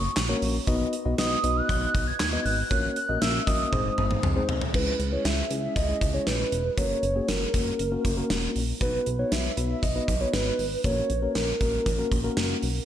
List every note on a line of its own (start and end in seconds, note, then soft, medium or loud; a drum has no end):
0.00 0.42 C#6 medium
0.17 0.34 A#1 loud
0.17 snare loud
0.17 clap loud
0.17 closed hi-hat medium
0.29 0.56 A#3 medium
0.29 0.55 C#4 medium
0.29 0.55 F#4 medium
0.29 0.55 A#4 medium
0.29 0.55 C#5 loud
0.42 0.60 A#1 medium
0.42 open hi-hat medium
0.67 0.85 B1 loud
0.67 0.94 B3 medium
0.67 0.94 D#4 medium
0.67 0.94 F#4 medium
0.67 0.94 B4 medium
0.67 0.94 D#5 loud
0.67 kick loud
0.67 closed hi-hat medium
0.93 closed hi-hat medium
1.06 1.15 B1 loud
1.06 1.14 B3 medium
1.06 1.14 D#4 medium
1.06 1.14 F#4 medium
1.06 1.14 B4 medium
1.06 1.14 D#5 medium
1.18 1.36 B1 loud
1.18 1.36 B3 medium
1.18 1.36 D#4 medium
1.18 1.36 F#4 medium
1.18 1.36 B4 medium
1.18 1.36 D#5 medium
1.18 1.58 D#6 loud
1.18 snare loud
1.18 closed hi-hat medium
1.44 1.62 B1 loud
1.44 2.05 B3 medium
1.44 2.05 D#4 medium
1.44 2.05 F#4 medium
1.44 2.05 B4 medium
1.44 2.05 D#5 medium
1.44 closed hi-hat medium
1.56 2.09 F#6 loud
1.69 1.87 B1 loud
1.69 kick loud
1.69 closed hi-hat medium
1.95 2.12 B1 loud
1.95 kick medium
1.95 closed hi-hat medium
2.07 2.20 G#6 loud
2.20 2.38 D#2 loud
2.20 2.44 G#6 loud
2.20 snare loud
2.20 clap medium
2.20 closed hi-hat medium
2.33 2.59 B3 medium
2.33 2.59 D#4 medium
2.33 2.59 F#4 medium
2.33 2.59 B4 medium
2.33 2.59 D#5 medium
2.45 2.63 G#1 loud
2.45 2.93 F#6 loud
2.45 open hi-hat medium
2.71 2.89 A#1 loud
2.71 2.97 A#3 medium
2.71 2.97 C#4 medium
2.71 2.97 F#4 medium
2.71 2.97 A#4 medium
2.71 2.97 C#5 medium
2.71 kick loud
2.71 closed hi-hat medium
2.96 3.20 F#6 loud
2.96 closed hi-hat medium
3.09 3.18 A#1 loud
3.09 3.18 A#3 medium
3.09 3.18 C#4 medium
3.09 3.18 F#4 medium
3.09 3.18 A#4 medium
3.09 3.18 D#5 medium
3.22 3.40 A#1 loud
3.22 3.39 A#3 medium
3.22 3.39 C#4 medium
3.22 3.39 F#4 medium
3.22 3.39 A#4 medium
3.22 3.39 E5 medium
3.22 3.49 E6 loud
3.22 snare loud
3.22 closed hi-hat medium
3.47 3.65 A#1 loud
3.47 3.73 A#3 medium
3.47 3.73 C#4 medium
3.47 3.73 F#4 medium
3.47 3.73 A#4 medium
3.47 3.73 D#5 medium
3.47 4.49 D#6 loud
3.47 kick loud
3.47 closed hi-hat medium
3.73 3.90 G#1 loud
3.73 4.23 G#3 medium
3.73 4.23 C4 medium
3.73 4.23 D#4 medium
3.73 4.23 G#4 medium
3.73 4.23 C5 medium
3.73 kick medium
3.73 high tom medium
3.98 4.16 G#1 loud
3.98 mid tom medium
4.11 mid tom medium
4.23 4.41 C2 loud
4.23 mid tom medium
4.36 4.62 G#3 medium
4.36 4.62 C4 medium
4.36 4.62 D#4 medium
4.36 4.62 G#4 medium
4.36 4.62 C5 loud
4.49 4.67 C2 medium
4.49 floor tom loud
4.61 floor tom loud
4.74 4.92 C#2 loud
4.74 5.00 G#3 medium
4.74 5.00 C#4 medium
4.74 5.00 E4 medium
4.74 5.00 G#4 medium
4.74 5.10 B4 loud
4.74 kick loud
4.74 crash medium
5.00 5.17 C#2 loud
5.00 closed hi-hat medium
5.12 5.39 G#3 medium
5.12 5.39 C#4 medium
5.12 5.39 E4 medium
5.12 5.39 G#4 medium
5.12 5.27 C#5 loud
5.25 5.43 C#2 loud
5.25 5.63 E5 loud
5.25 snare loud
5.25 closed hi-hat medium
5.50 5.68 C#2 loud
5.50 5.77 G#3 medium
5.50 5.77 C#4 medium
5.50 5.77 E4 medium
5.50 5.77 G#4 medium
5.50 closed hi-hat medium
5.63 5.77 E5 loud
5.76 5.94 C#2 loud
5.76 6.16 D#5 loud
5.76 kick medium
5.76 closed hi-hat medium
5.88 6.06 G#3 medium
5.88 6.06 C#4 medium
5.88 6.06 E4 medium
5.88 6.06 G#4 medium
6.01 6.19 C#2 medium
6.01 kick medium
6.01 closed hi-hat medium
6.14 6.58 G#3 medium
6.14 6.58 C#4 medium
6.14 6.58 E4 medium
6.14 6.58 G#4 medium
6.14 6.28 C#5 medium
6.27 6.45 A#1 medium
6.27 6.77 B4 loud
6.27 snare loud
6.27 closed hi-hat medium
6.52 6.70 E1 medium
6.52 closed hi-hat medium
6.77 6.95 F#1 loud
6.77 7.04 A#3 medium
6.77 7.04 C#4 medium
6.77 7.04 F#4 medium
6.77 7.04 A#4 medium
6.77 7.30 C#5 loud
6.77 kick loud
6.77 closed hi-hat medium
7.03 7.21 F#1 loud
7.03 closed hi-hat medium
7.16 7.42 A#3 medium
7.16 7.42 C#4 medium
7.16 7.42 F#4 medium
7.16 7.42 G#4 medium
7.28 7.46 F#1 loud
7.28 8.56 A#4 medium
7.28 snare loud
7.28 closed hi-hat medium
7.54 7.72 F#1 loud
7.54 7.80 A#3 medium
7.54 7.80 C#4 medium
7.54 7.80 F#4 medium
7.54 7.80 A#4 medium
7.54 kick loud
7.54 closed hi-hat medium
7.79 7.97 F#1 loud
7.79 closed hi-hat medium
7.92 8.09 A#3 medium
7.92 8.09 C#4 medium
7.92 8.09 F#4 medium
7.92 8.09 A#4 medium
8.05 8.23 F#1 loud
8.05 kick medium
8.05 closed hi-hat medium
8.17 8.61 A#3 medium
8.17 8.61 C#4 medium
8.17 8.61 F#4 medium
8.17 8.61 A#4 loud
8.30 8.48 E1 loud
8.30 snare loud
8.30 closed hi-hat medium
8.56 8.73 A#1 medium
8.56 open hi-hat medium
8.81 8.99 B1 loud
8.81 9.07 B3 medium
8.81 9.07 D#4 medium
8.81 9.07 F#4 medium
8.81 9.07 B4 medium
8.81 9.21 B4 loud
8.81 kick loud
8.81 closed hi-hat medium
9.06 9.24 B1 loud
9.06 closed hi-hat medium
9.19 9.45 B3 medium
9.19 9.45 D#4 medium
9.19 9.45 F#4 medium
9.19 9.45 B4 medium
9.19 9.33 C#5 loud
9.32 9.50 B1 loud
9.32 9.69 E5 loud
9.32 snare loud
9.32 closed hi-hat medium
9.57 9.75 B1 loud
9.57 9.83 B3 medium
9.57 9.83 D#4 medium
9.57 9.83 F#4 medium
9.57 9.83 B4 medium
9.57 closed hi-hat medium
9.70 9.84 E5 loud
9.83 10.01 B1 loud
9.83 10.22 D#5 loud
9.83 kick medium
9.83 closed hi-hat medium
9.95 10.13 B3 medium
9.95 10.13 D#4 medium
9.95 10.13 F#4 medium
9.95 10.13 B4 medium
10.08 10.26 B1 loud
10.08 kick medium
10.08 closed hi-hat medium
10.21 10.65 B3 medium
10.21 10.65 D#4 medium
10.21 10.65 F#4 medium
10.21 10.65 B4 medium
10.21 10.33 C#5 medium
10.34 10.51 G#1 loud
10.34 10.81 B4 loud
10.34 snare loud
10.34 closed hi-hat medium
10.59 10.77 G#1 medium
10.59 open hi-hat medium
10.84 11.02 A#1 loud
10.84 11.11 A#3 medium
10.84 11.11 C#4 medium
10.84 11.11 F#4 medium
10.84 11.11 A#4 medium
10.84 11.37 C#5 loud
10.84 kick loud
10.84 closed hi-hat medium
11.10 11.28 A#1 loud
11.10 closed hi-hat medium
11.22 11.49 A#3 medium
11.22 11.49 C#4 medium
11.22 11.49 F#4 medium
11.22 11.49 A#4 medium
11.35 11.53 A#1 loud
11.35 12.62 A#4 medium
11.35 snare loud
11.35 closed hi-hat medium
11.61 11.79 A#1 loud
11.61 11.87 A#3 medium
11.61 11.87 C#4 medium
11.61 11.87 F#4 medium
11.61 11.87 A#4 medium
11.61 kick loud
11.61 closed hi-hat medium
11.86 12.04 A#1 loud
11.86 kick medium
11.86 closed hi-hat medium
11.99 12.16 A#3 medium
11.99 12.16 C#4 medium
11.99 12.16 F#4 medium
11.99 12.16 A#4 medium
12.12 12.29 A#1 loud
12.12 kick medium
12.12 closed hi-hat medium
12.24 12.68 A#3 medium
12.24 12.68 C#4 medium
12.24 12.68 F#4 medium
12.24 12.68 A#4 loud
12.37 12.55 F#1 loud
12.37 snare loud
12.37 closed hi-hat medium
12.62 12.80 B1 medium
12.62 open hi-hat medium